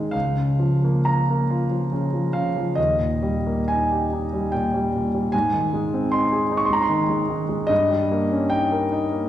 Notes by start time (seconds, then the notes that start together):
Already playing: D#3 G#3 C4 D#4 G#4 D#5 F5
0.11 C#2 F5
0.35 C#3
0.59 F3
0.84 A#3
1.05 F4 A#5
1.30 A#3
1.50 F4
1.71 F3
1.92 C#3
2.14 F3
2.33 C#3 F5
2.56 F3
2.75 D#2 D#5
2.99 A#2
3.22 G3
3.47 A#3
3.68 D#4 G#5
3.91 G4
4.13 D#4
4.33 G3
4.52 A#2 G5
4.74 G3
4.95 A#2
5.15 G3
5.32 G#2 G#5
5.53 D#3
5.73 G#3
5.94 C4
6.12 D#4 C6
6.32 G#4
6.51 D#4
6.57 C#6
6.65 C6
6.70 G#3 A#5
6.82 C6
6.89 D#3
7.10 G#3
7.28 D#3
7.49 G#3
7.67 G2 D#5
7.90 G3
8.11 A#3
8.32 C#4
8.50 D#4 G5
8.72 A#4
8.92 D#4
9.12 A#3